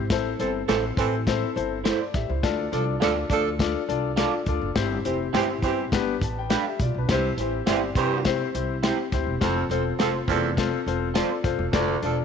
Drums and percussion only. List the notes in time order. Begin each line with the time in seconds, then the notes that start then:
0.10 kick, snare, closed hi-hat
0.40 closed hi-hat
0.69 snare, closed hi-hat
0.97 kick, closed hi-hat
1.27 kick, snare, closed hi-hat
1.57 closed hi-hat
1.85 snare, closed hi-hat
2.14 kick, snare, closed hi-hat
2.43 kick, snare, closed hi-hat
2.73 closed hi-hat
3.02 snare, closed hi-hat
3.30 kick, closed hi-hat
3.59 kick, snare, closed hi-hat
3.89 closed hi-hat
4.17 snare, closed hi-hat
4.46 kick, closed hi-hat
4.76 kick, snare, closed hi-hat
5.05 closed hi-hat
5.34 snare, closed hi-hat
5.62 kick, closed hi-hat
5.92 kick, snare, closed hi-hat
6.21 kick, closed hi-hat
6.50 snare, closed hi-hat
6.79 kick, closed hi-hat
7.09 kick, snare, closed hi-hat
7.38 closed hi-hat
7.67 snare, closed hi-hat
7.95 kick, closed hi-hat
8.25 kick, snare, closed hi-hat
8.55 closed hi-hat
8.83 snare, closed hi-hat
9.12 kick, snare, closed hi-hat
9.41 kick, snare, closed hi-hat
9.71 closed hi-hat
10.00 snare, closed hi-hat
10.28 kick, closed hi-hat
10.57 kick, snare, closed hi-hat
10.88 closed hi-hat
11.15 snare, closed hi-hat
11.44 kick, snare, closed hi-hat
11.73 kick, snare, closed hi-hat
12.03 closed hi-hat